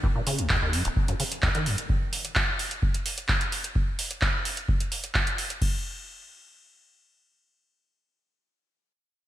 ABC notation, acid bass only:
X:1
M:4/4
L:1/16
Q:1/4=129
K:Ebm
V:1 name="Acid bass" clef=bass
E,, B,, D, D,, E,, E,, G,, E,,, z G,, D, z E,, E, G,, z | z16 | z16 | z16 |
z16 |]